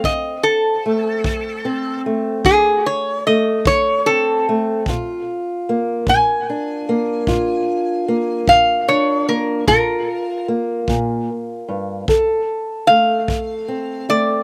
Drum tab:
BD |o--o--o--o--|o--o--o--o--|o--o--o--o--|